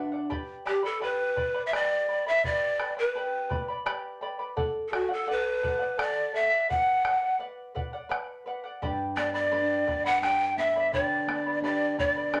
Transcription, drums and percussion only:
0.14 bombo rim
0.31 bombo low
0.67 bombo rim
0.85 bombo rim
1.37 bombo rim, bombo low
1.73 bombo rim
2.44 bombo low
2.80 bombo rim
2.98 bombo rim
3.51 bombo rim, bombo low
3.86 bombo rim
4.57 bombo low
4.93 bombo rim
5.11 bombo rim
5.64 bombo rim, bombo low
5.99 bombo rim
6.71 bombo low
6.88 bombo rim
7.05 bombo rim
7.76 bombo low
8.12 bombo rim
8.83 bombo low
9.17 bombo rim
9.36 bombo rim
9.88 bombo rim, bombo low
10.23 bombo rim
10.94 bombo low
11.29 bombo rim
11.47 bombo rim
11.99 bombo rim, bombo low
12.34 bombo rim

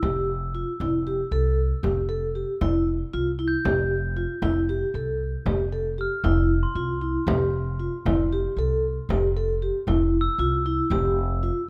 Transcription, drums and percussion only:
0.03 frame drum
0.81 frame drum
1.84 frame drum
2.61 frame drum
3.65 frame drum
4.42 frame drum
5.46 frame drum
6.24 frame drum
7.28 frame drum
8.06 frame drum
9.10 frame drum
9.88 frame drum
10.91 frame drum

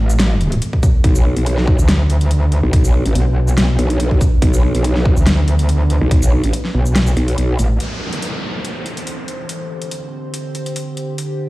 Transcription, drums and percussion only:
0.10 shaker
0.20 snare, closed hi-hat
0.41 closed hi-hat
0.52 closed hi-hat
0.62 closed hi-hat
0.73 kick
0.83 kick, closed hi-hat, shaker
1.04 kick, closed hi-hat
1.15 shaker
1.37 closed hi-hat
1.46 closed hi-hat
1.58 snare
1.67 kick
1.79 shaker
1.89 snare, closed hi-hat
2.10 closed hi-hat
2.21 closed hi-hat
2.31 closed hi-hat
2.52 closed hi-hat
2.73 kick, closed hi-hat
2.84 shaker
3.06 closed hi-hat
3.15 closed hi-hat
3.48 shaker
3.58 snare, closed hi-hat
3.79 closed hi-hat
3.90 closed hi-hat
4.00 closed hi-hat
4.11 kick
4.21 kick, closed hi-hat, shaker
4.42 kick, closed hi-hat
4.54 shaker
4.75 closed hi-hat
4.84 closed hi-hat
4.96 snare
5.05 kick
5.17 shaker
5.27 snare, closed hi-hat
5.48 closed hi-hat
5.59 closed hi-hat
5.69 closed hi-hat
5.90 closed hi-hat
6.11 kick, closed hi-hat
6.22 shaker
6.44 closed hi-hat
6.53 closed hi-hat
6.65 snare
6.86 shaker
6.96 snare, closed hi-hat
7.07 shaker
7.17 closed hi-hat
7.28 closed hi-hat
7.38 closed hi-hat
7.59 closed hi-hat, shaker
7.80 closed hi-hat
8.13 closed hi-hat
8.22 closed hi-hat
8.65 closed hi-hat
8.86 closed hi-hat
8.97 closed hi-hat
9.07 closed hi-hat
9.28 closed hi-hat
9.49 closed hi-hat
9.82 closed hi-hat
9.91 closed hi-hat
10.34 closed hi-hat
10.55 closed hi-hat
10.66 closed hi-hat
10.76 closed hi-hat
10.97 closed hi-hat
11.18 closed hi-hat

